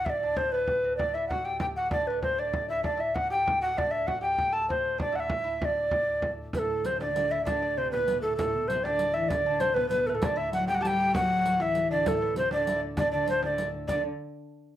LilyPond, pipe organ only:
\new Staff \with { instrumentName = "Pipe organ" } { \clef bass \time 6/8 \key d \mixolydian \tempo 4. = 130 <d, a,>2.~ | <d, a,>2.~ | <d, a,>2. | <d, a,>2.~ |
<d, a,>2.~ | <d, a,>2.~ | <d, a,>2. | <d, a,>2.~ |
<d, a,>2.~ | <d, a,>2.~ | <d, a,>2. | <d, a,>2.~ |
<d, a,>2.~ | <d, a,>2.~ | <d, a,>2. | r2. | }